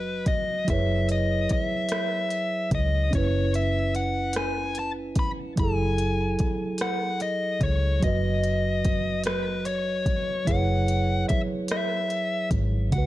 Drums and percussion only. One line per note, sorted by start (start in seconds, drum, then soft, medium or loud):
0.26 kick medium
0.26 closed hi-hat soft
0.68 kick medium
0.68 closed hi-hat medium
1.09 closed hi-hat soft
1.49 kick medium
1.49 closed hi-hat soft
1.89 cross-stick medium
1.89 closed hi-hat medium
2.30 closed hi-hat soft
2.71 kick medium
2.71 closed hi-hat soft
3.13 kick medium
3.13 closed hi-hat medium
3.54 closed hi-hat soft
3.95 closed hi-hat soft
4.33 cross-stick medium
4.33 closed hi-hat medium
4.75 closed hi-hat soft
5.16 kick medium
5.16 closed hi-hat soft
5.57 kick loud
5.57 closed hi-hat medium
5.98 closed hi-hat soft
6.39 kick medium
6.39 closed hi-hat soft
6.78 cross-stick loud
6.78 closed hi-hat medium
7.20 closed hi-hat soft
7.61 kick medium
7.61 closed hi-hat soft
8.03 kick loud
8.03 closed hi-hat medium
8.44 closed hi-hat soft
8.85 kick medium
8.85 closed hi-hat soft
9.24 cross-stick loud
9.24 closed hi-hat medium
9.65 closed hi-hat soft
10.06 kick medium
10.06 closed hi-hat soft
10.47 kick medium
10.47 closed hi-hat medium
10.88 closed hi-hat soft
11.29 kick medium
11.29 closed hi-hat soft
11.68 cross-stick loud
11.68 closed hi-hat medium
12.10 closed hi-hat soft
12.51 kick medium
12.51 closed hi-hat soft
12.92 kick loud
12.92 closed hi-hat medium